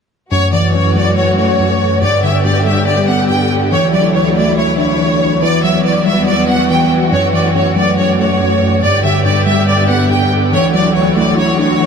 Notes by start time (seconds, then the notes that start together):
0.32 F#2 E3 A3 F#4 C#5
0.53 E3 D5
0.74 F#2 C#5
0.96 F#3 D5
1.17 C#5
1.38 A3 C#5
1.59 F#2
2.02 G2 D3 B3 G4 D5
2.23 D3 E5
2.44 G2 D5
2.66 G3 E5
2.87 D5
3.08 B3 F#5
3.30 G2 G5
3.72 D2 E3 F#3 E4 C#5
3.93 F#3 D5
4.14 E3 C#5
4.36 A3 D5
4.58 C#5
4.78 D4 C#5
5.00 E3
5.42 E2 E3 B3 F#4 D5
5.64 F#3 E5
5.85 E3 D5
6.06 G3 E5
6.27 D5
6.49 B3 F#5
6.70 E3 G5
7.13 F#2 A3 C#5
7.34 E3 D5
7.55 F#2 C#5
7.76 F#3 D5
7.97 C#5
8.19 A3 C#5
8.40 F#2
8.83 G2 D3 B3 G4 D5
9.04 D3 E5
9.25 G2 D5
9.47 G3 E5
9.67 D5
9.89 B3 F#5
10.11 G2 G5
10.53 D2 E3 E4 F#4 C#5
10.74 F#3 D5
10.95 E3 C#5
11.17 A3 D5
11.38 C#5
11.59 D4 C#5
11.81 E3